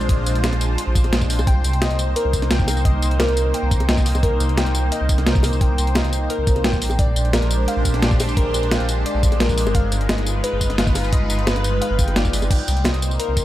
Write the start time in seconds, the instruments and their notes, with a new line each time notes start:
Already playing: analog synth pad G#3 D4 F4 C5
0.01 detuned saw bass A#1, tambourine
0.09 kick, closed hi-hat
0.26 detuned saw bass A#1, closed hi-hat, tambourine
0.35 closed hi-hat
0.44 snare, closed hi-hat, tambourine, high bongo
0.53 detuned saw bass A#1, snare, closed hi-hat
0.61 closed hi-hat, tambourine
0.78 closed hi-hat
0.87 detuned saw bass A#1
0.95 kick, closed hi-hat, tambourine
1.04 closed hi-hat, high bongo
1.13 detuned saw bass A#1, snare, closed hi-hat
1.22 kick, tambourine
1.30 open hi-hat, tambourine
1.39 detuned saw bass C2, tambourine, high bongo
1.47 analog synth pad A#3 D#4, synth pluck G5, kick, closed hi-hat
1.64 detuned saw bass C2, closed hi-hat, tambourine
1.73 closed hi-hat
1.82 synth pluck D#5, snare, closed hi-hat, tambourine, high bongo
1.91 detuned saw bass C2, closed hi-hat
1.99 closed hi-hat, tambourine
2.16 synth pluck A#4, closed hi-hat
2.25 detuned saw bass C2
2.33 kick, closed hi-hat, tambourine
2.42 snare, closed hi-hat
2.51 detuned saw bass C2, synth pluck G5, snare, closed hi-hat
2.60 kick, tambourine
2.68 open hi-hat, tambourine, high bongo
2.77 detuned saw bass C2, tambourine
2.85 synth pluck D#5, kick, closed hi-hat
3.02 detuned saw bass C2, closed hi-hat, tambourine
3.11 closed hi-hat
3.19 synth pluck A#4, snare, closed hi-hat, tambourine, high bongo
3.29 detuned saw bass C2, closed hi-hat
3.37 closed hi-hat, tambourine
3.54 synth pluck G5, closed hi-hat
3.63 detuned saw bass C2
3.71 kick, closed hi-hat, tambourine
3.80 closed hi-hat, high bongo
3.89 detuned saw bass C2, synth pluck D#5, snare, closed hi-hat
3.97 kick, tambourine
4.06 open hi-hat, tambourine
4.15 detuned saw bass C2, tambourine, high bongo
4.23 synth pluck A#4, kick, closed hi-hat
4.40 detuned saw bass C2, closed hi-hat, tambourine
4.49 closed hi-hat
4.58 synth pluck G5, snare, closed hi-hat, tambourine, high bongo
4.66 detuned saw bass C2, closed hi-hat
4.75 closed hi-hat, tambourine
4.92 synth pluck D#5, closed hi-hat
5.01 detuned saw bass C2
5.09 kick, closed hi-hat, tambourine
5.18 snare, closed hi-hat
5.26 detuned saw bass C2, synth pluck A#4, snare, closed hi-hat
5.35 kick, tambourine
5.43 open hi-hat, tambourine, high bongo
5.53 detuned saw bass C2, tambourine
5.61 synth pluck G5, kick, closed hi-hat
5.78 detuned saw bass C2, closed hi-hat, tambourine
5.87 closed hi-hat
5.95 synth pluck D#5, snare, closed hi-hat, tambourine, high bongo
6.04 detuned saw bass C2, closed hi-hat
6.13 closed hi-hat, tambourine
6.30 synth pluck A#4, closed hi-hat
6.39 detuned saw bass C2
6.47 kick, closed hi-hat, tambourine
6.56 closed hi-hat, high bongo
6.64 detuned saw bass A#1, synth pluck G5, snare, closed hi-hat
6.73 kick, tambourine
6.82 analog synth pad G#3 D4 G4 C5, open hi-hat, tambourine
6.90 detuned saw bass A#1, tambourine, high bongo
6.99 synth pluck D5, kick, closed hi-hat
7.16 detuned saw bass A#1, closed hi-hat, tambourine
7.25 closed hi-hat
7.33 synth pluck A#4, snare, closed hi-hat, tambourine, high bongo
7.42 detuned saw bass A#1, closed hi-hat
7.51 closed hi-hat, tambourine
7.68 synth pluck F5, closed hi-hat
7.77 detuned saw bass A#1
7.85 kick, closed hi-hat, tambourine
7.94 snare, closed hi-hat
8.02 detuned saw bass A#1, synth pluck D5, snare, closed hi-hat
8.11 kick, tambourine
8.20 open hi-hat, tambourine, high bongo
8.29 detuned saw bass A#1, tambourine
8.37 synth pluck A#4, kick, closed hi-hat
8.54 detuned saw bass A#1, closed hi-hat, tambourine
8.63 closed hi-hat
8.71 synth pluck F5, snare, closed hi-hat, tambourine, high bongo
8.80 detuned saw bass A#1, closed hi-hat
8.89 closed hi-hat, tambourine
9.06 synth pluck D5, closed hi-hat
9.15 detuned saw bass A#1
9.23 kick, closed hi-hat, tambourine
9.32 closed hi-hat, high bongo
9.40 detuned saw bass A#1, synth pluck A#4, snare, closed hi-hat
9.49 kick, tambourine
9.58 open hi-hat, tambourine
9.66 detuned saw bass G1, tambourine, high bongo
9.75 analog synth pad D#4 F4 B4, synth pluck F5, kick, closed hi-hat
9.92 detuned saw bass G1, closed hi-hat, tambourine
10.01 closed hi-hat
10.09 synth pluck D#5, snare, closed hi-hat, tambourine, high bongo
10.18 detuned saw bass G1, closed hi-hat
10.27 closed hi-hat, tambourine
10.44 synth pluck B4, closed hi-hat
10.53 detuned saw bass G1
10.61 kick, closed hi-hat, tambourine
10.70 snare, closed hi-hat
10.78 detuned saw bass G1, synth pluck F5, snare, closed hi-hat
10.87 kick, tambourine
10.95 open hi-hat, tambourine, high bongo
11.04 detuned saw bass G1, tambourine
11.13 synth pluck D#5, kick, closed hi-hat
11.30 detuned saw bass G1, closed hi-hat, tambourine
11.39 closed hi-hat
11.47 synth pluck B4, snare, closed hi-hat, tambourine, high bongo
11.56 detuned saw bass G1, snare, closed hi-hat
11.64 closed hi-hat, tambourine
11.82 synth pluck F5, closed hi-hat
11.91 detuned saw bass G1
11.99 synth pluck G5, kick, closed hi-hat, tambourine
12.08 closed hi-hat, high bongo
12.16 detuned saw bass G1, synth pluck D5, snare, closed hi-hat
12.25 kick, tambourine
12.33 open hi-hat, tambourine
12.42 detuned saw bass G1, tambourine, high bongo
12.50 analog synth pad A#3 D#4 C5, synth pluck G5, kick, closed hi-hat, crash
12.68 detuned saw bass C2, closed hi-hat, tambourine
12.77 closed hi-hat
12.85 synth pluck D#5, snare, closed hi-hat, high bongo
12.94 detuned saw bass C2, closed hi-hat
13.02 closed hi-hat, tambourine
13.11 tambourine
13.19 synth pluck A#4, closed hi-hat
13.29 detuned saw bass C2
13.37 kick, closed hi-hat, tambourine